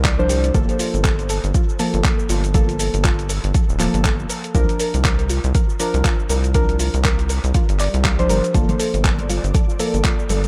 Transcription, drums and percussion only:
0.04 kick, clap, closed hi-hat, shaker
0.19 shaker
0.29 open hi-hat, shaker
0.44 closed hi-hat, shaker
0.54 kick, closed hi-hat, shaker
0.69 closed hi-hat, shaker
0.79 open hi-hat, shaker
0.94 closed hi-hat, shaker
1.04 kick, clap, closed hi-hat, shaker
1.19 closed hi-hat, shaker
1.29 open hi-hat, shaker
1.44 closed hi-hat, shaker
1.54 kick, closed hi-hat, shaker
1.69 shaker
1.79 open hi-hat, shaker
1.94 closed hi-hat, shaker
2.04 kick, clap, closed hi-hat, shaker
2.19 shaker
2.29 open hi-hat, shaker
2.44 closed hi-hat, shaker
2.54 kick, closed hi-hat, shaker
2.69 closed hi-hat, shaker
2.79 open hi-hat, shaker
2.94 closed hi-hat, shaker
3.04 kick, clap, closed hi-hat, shaker
3.19 closed hi-hat, shaker
3.29 open hi-hat, shaker
3.44 closed hi-hat, shaker
3.54 kick, closed hi-hat, shaker
3.69 shaker
3.79 clap, open hi-hat, shaker
3.94 closed hi-hat, shaker
4.04 kick, clap, closed hi-hat, shaker
4.19 shaker
4.30 open hi-hat, shaker
4.44 closed hi-hat, shaker
4.55 kick, closed hi-hat, shaker
4.69 closed hi-hat, shaker
4.79 open hi-hat, shaker
4.94 closed hi-hat, shaker
5.04 kick, clap, closed hi-hat, shaker
5.19 closed hi-hat, shaker
5.29 open hi-hat, shaker
5.44 closed hi-hat, shaker
5.55 kick, closed hi-hat, shaker
5.69 shaker
5.80 open hi-hat, shaker
5.94 closed hi-hat, shaker
6.05 kick, clap, closed hi-hat, shaker
6.19 shaker
6.29 open hi-hat, shaker
6.44 closed hi-hat, shaker
6.54 kick, closed hi-hat, shaker
6.69 closed hi-hat, shaker
6.79 open hi-hat, shaker
6.94 closed hi-hat, shaker
7.04 kick, clap, closed hi-hat, shaker
7.19 closed hi-hat, shaker
7.29 open hi-hat, shaker
7.44 closed hi-hat, shaker
7.54 kick, closed hi-hat, shaker
7.69 closed hi-hat, shaker
7.79 clap, open hi-hat, shaker
7.94 closed hi-hat, shaker
8.04 kick, clap, closed hi-hat, shaker
8.19 closed hi-hat, shaker
8.29 open hi-hat, shaker
8.44 closed hi-hat, shaker
8.54 kick, closed hi-hat, shaker
8.69 closed hi-hat, muted conga, high conga, low conga, shaker
8.80 open hi-hat, shaker
8.94 closed hi-hat, shaker
9.05 kick, clap, closed hi-hat, high conga, shaker
9.19 closed hi-hat, muted conga, shaker
9.30 open hi-hat, high conga, shaker
9.44 closed hi-hat, shaker
9.54 kick, closed hi-hat, muted conga, shaker
9.69 shaker
9.79 open hi-hat, shaker
9.94 closed hi-hat, shaker
10.04 kick, clap, closed hi-hat, muted conga, shaker
10.19 shaker
10.29 open hi-hat, high conga, shaker
10.44 closed hi-hat, muted conga, shaker

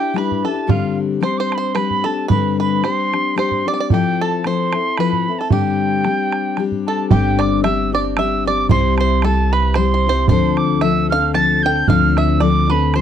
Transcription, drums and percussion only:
0.16 bodhran
0.31 bodhran
0.69 bodhran
1.23 bodhran
1.52 bodhran
1.76 bodhran
1.90 bodhran
2.30 bodhran
2.84 bodhran
3.14 bodhran
3.38 bodhran
3.51 bodhran
3.90 bodhran
4.44 bodhran
4.73 bodhran
4.97 bodhran
5.13 bodhran
5.51 bodhran
6.05 bodhran
6.32 bodhran
6.57 bodhran
6.72 bodhran
7.11 bodhran
7.40 bodhran
7.64 bodhran
8.17 bodhran
8.69 bodhran
8.98 bodhran
9.22 bodhran
9.74 bodhran
10.28 bodhran
10.57 bodhran
10.81 bodhran
11.34 bodhran
11.88 bodhran
12.17 bodhran
12.40 bodhran
12.94 bodhran

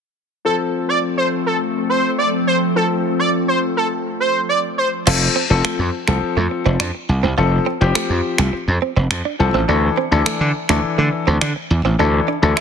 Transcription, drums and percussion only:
5.07 crash
5.65 finger snap
6.08 finger snap
6.80 finger snap
7.95 finger snap
8.38 finger snap
9.11 finger snap
10.26 finger snap
10.69 finger snap
11.41 finger snap
12.57 finger snap

